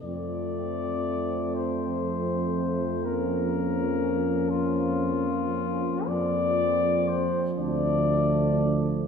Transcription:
X:1
M:6/8
L:1/8
Q:3/8=40
K:F
V:1 name="Flugelhorn"
d3 c3 | B3 F3 | d2 c d2 z |]
V:2 name="French horn section"
C6 | _D6 | C3 D3 |]
V:3 name="Euphonium"
A,6 | B,6- | B,2 z A,3 |]
V:4 name="Trombone" clef=bass
F,6- | F,6 | F,6 |]
V:5 name="Tuba" clef=bass
F,,6- | F,,6 | F,,2 z D,,3 |]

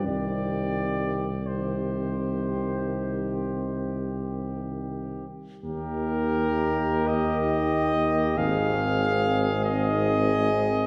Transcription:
X:1
M:12/8
L:1/8
Q:3/8=44
K:Cm
V:1 name="Cornet"
d3 c6 z3 | [K:Eb] B3 e3 f3 e3 |]
V:2 name="Flugelhorn"
G3 G8 z | [K:Eb] G6 A6 |]
V:3 name="Euphonium"
C3 C8 z | [K:Eb] B,6 C6 |]
V:4 name="Trombone" clef=bass
E,3 E,8 z | [K:Eb] E,12 |]
V:5 name="Tuba" clef=bass
C,,8- C,,3 z | [K:Eb] E,,6 A,,,6 |]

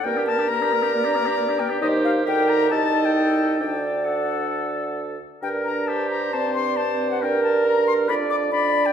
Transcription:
X:1
M:4/4
L:1/16
Q:1/4=135
K:Gm
V:1 name="Flute"
g2 a2 b8- b2 g2 | e2 f2 g2 b2 a3 g g4 | g4 ^f8 z4 | g2 b2 a2 b2 a2 c'2 a3 ^f |
g2 a2 b2 c'2 =b2 d'2 b3 g |]
V:2 name="Clarinet"
B4 B4 d8 | c4 B4 e8 | d12- d2 z2 | B4 c4 d8 |
B8 d4 d4 |]
V:3 name="Oboe"
B G B G B G B G B G B G B G B G | G4 G4 A8 | A4 A8- A2 z2 | B4 G4 c4 c4 |
B8 d4 d4 |]
V:4 name="French horn"
B, D B, D B, D B, D B, D B, D B, D B, D | E4 E4 E8 | D4 D8- D2 z2 | D8 C4 C4 |
D4 D4 D4 D4 |]
V:5 name="Bassoon" clef=bass
G,,16 | E,,4 D,,4 C,,8 | D,,12- D,,2 z2 | G,,16- |
G,,8 F,,8 |]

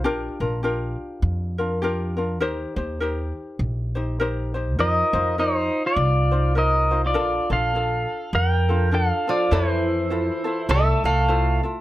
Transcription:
X:1
M:4/4
L:1/16
Q:"Swing" 1/4=102
K:Bb
V:1 name="Pedal steel guitar"
z16 | z16 | [Be]4 [Ec]3 [Fd]4- [Fd] [Be]3 [Fd]- | [Fd]2 [Af]6 [Bg]4 [Af]2 [Fd]2 |
[K:F] [Ec]8 [Ae]2 [Af]4 z2 |]
V:2 name="Ukulele"
[DFGB]2 [DFB]2 [DFGB]6 [DFB]2 [DFGB]2 [DFB]2 | [EGBc]2 [EGc]2 [EGBc]6 [EGc]2 [EGBc]2 [EGc]2 | [EFBc]2 [EFc]2 [EFBc]6 [EFc]2 [EFBc]2 [EFc]2 | [DFAB]2 [DFA]2 [DFA]6 [DFA]2 [DFAB]2 [DFA]2 |
[K:F] [EAc]4 [EFAc]2 [EFA]6 [EFAc]2 [EFA]2 |]
V:3 name="Steel-string acoustic guitar" clef=bass
z16 | z16 | z16 | z12 z2 F,2 |
[K:F] E,8 A,2 A,4 z2 |]
V:4 name="Upright bass" clef=bass
B,,,2 B,,,6 F,,8 | E,,2 E,,6 B,,,8 | F,,2 F,,6 C,,8 | B,,,2 B,,,6 F,,8 |
[K:F] F,,8 C,,2 C,,6 |]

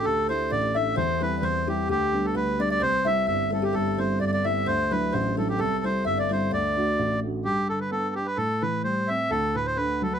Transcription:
X:1
M:2/4
L:1/16
Q:"Swing" 1/4=130
K:Dmix
V:1 name="Kalimba"
A2 c2 d2 e2 | c2 B3/2 d/2 c2 G2 | G4 B2 d d | c2 e2 e2 A G |
A2 c2 d d e2 | c2 B2 c2 A2 | A2 c2 e d c2 | d6 z2 |
z8 | z8 | z8 |]
V:2 name="Accordion"
A2 c2 d2 e2 | c2 B2 c2 G2 | G3 A B2 d d | c2 e2 e2 A G |
A2 c2 d/2 d/2 d e2 | c2 B2 c2 A G | A2 c2 e d c2 | d6 z2 |
G2 A B A2 G B | A2 B2 c2 e2 | A2 B c B2 A B |]
V:3 name="Grand piano"
D,,2 [A,DE]2 A,,,2 [A,DE]2 | E,,2 [G,CE]2 E,,2 [G,CE]2 | D,,2 [G,B,D]2 D,,2 [G,B,D]2 | C,,2 [G,CE]2 G,,,2 [G,CE]2 |
G,,,2 [G,CE]2 G,,,2 [G,CE]2 | D,,2 [F,DE]2 A,,,2 [F,DE]2 | C,,2 [G,CE]2 G,,,2 [G,CE]2 | D,,2 [A,DF]2 A,,,2 [A,DF]2 |
G,,2 D,2 B,2 D2 | A,,2 E,2 G,2 C2 | D,,2 A,,2 D,2 F,2 |]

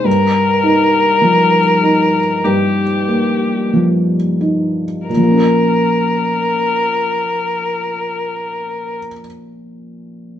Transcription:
X:1
M:4/4
L:1/8
Q:1/4=45
K:Bbdor
V:1 name="Violin"
B4 G2 z2 | B8 |]
V:2 name="Felt piano"
G,, E F, E G,, B, F, E | [B,,F,B,DB]8 |]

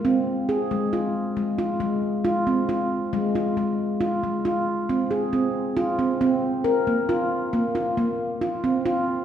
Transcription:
X:1
M:7/4
L:1/8
Q:1/4=136
K:Abmix
V:1 name="Handpan"
C2 A A, F2 A, F A,2 F C F2 | A, F A,2 F A, F2 C A C2 F C | C2 B B, F2 B, F B,2 F C F2 |]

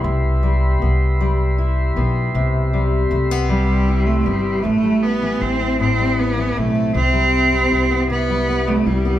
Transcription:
X:1
M:6/8
L:1/16
Q:3/8=52
K:C
V:1 name="Tonewheel organ"
[Gebc']12- | [Gebc']12 | z12 | z12 |]
V:2 name="Cello"
z12 | z6 G,3 A, G,2 | A,2 B,2 C2 C2 B,2 A,2 | C6 B,3 A, G,2 |]
V:3 name="Steel-string acoustic guitar" clef=bass
z2 G,2 B,2 G,2 E2 B,2 | C,2 G,2 A, B, G,2 E2 B,2 | A,, G,2 E, E C A,, G,2 E, E C | C, G,2 G, E B, C, G, B, G, E B, |]
V:4 name="Upright bass" clef=bass
C,,4 C,,6 B,,,2 | C,,4 C,,6 G,,,2 | A,,,4 A,,,6 B,,,2 | C,,4 C,,6 C,,2 |]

